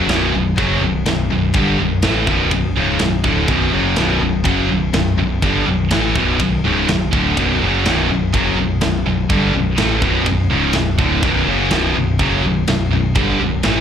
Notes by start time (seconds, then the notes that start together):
0.08 B0 B1 F#2 B2, snare, ride bell
0.33 B0 B1 F#2
0.56 F#1 F#2 C#3 F#3, kick, ride bell
0.82 B0 B1 F#2
1.06 B0 B1 F#2, snare, ride bell
1.30 B0 B1 F#2
1.54 G1 G2 D3 G3, kick, ride bell
1.79 B0 B1 F#2
2.02 A1 A2 E3 A3, snare, ride bell
2.27 B0 B1 F#2 B2, kick
2.51 B0 B1 F#2, kick, ride bell
2.77 C#1 C#2 G#2 C#3
2.99 B0 B1 F#2, snare, ride bell
3.23 D1 D2 A2 D3, kick
3.47 B0 B1 F#2 B2, kick, ride bell
3.72 F#1 F#2 C#3 F#3
3.96 B0 B1 F#2 B2, snare, ride bell
4.20 B0 B1 F#2
4.44 F#1 F#2 C#3 F#3, kick, ride bell
4.68 B0 B1 F#2
4.93 B0 B1 F#2, snare, ride bell
5.17 B0 B1 F#2
5.42 G1 G2 D3 G3, kick, ride bell
5.67 B0 B1 F#2
5.91 A1 A2 E3 A3, snare, ride bell
6.16 B0 B1 F#2 B2, kick
6.40 B0 B1 F#2, kick, ride bell
6.64 C#1 C#2 G#2 C#3
6.89 B0 B1 F#2, snare, ride bell
7.12 D1 D2 A2 D3, kick
7.37 B0 B1 F#2 B2, kick, ride bell
7.63 F#1 F#2 C#3 F#3
7.86 B0 B1 F#2 B2, snare, ride bell
8.10 B0 B1 F#2
8.34 F#1 F#2 C#3 F#3, kick, ride bell
8.57 B0 B1 F#2
8.81 B0 B1 F#2, snare, ride bell
9.06 B0 B1 F#2
9.30 G1 G2 D3 G3, kick, ride bell
9.54 B1 F#2
9.78 A1 A2 E3 A3, snare, ride bell
10.02 B0 B1 F#2 B2, kick
10.26 B0 B1 F#2, kick, ride bell
10.51 C#1 C#2 G#2 C#3
10.73 B0 B1 F#2, snare, ride bell
10.98 D1 D2 A2 D3, kick
11.23 B0 B1 F#2 B2, kick, ride bell
11.47 F#1 F#2 C#3 F#3
11.71 B0 B1 F#2 B2, snare, ride bell
11.95 B0 B1 F#2
12.19 F#1 F#2 C#3 F#3, kick, ride bell
12.43 B0 B1 F#2
12.67 B0 B1 F#2, snare, ride bell
12.91 B0 B1 F#2
13.15 G1 G2 D3 G3, kick, ride bell
13.40 B0 B1 F#2
13.63 A1 A2 E3 A3, snare, ride bell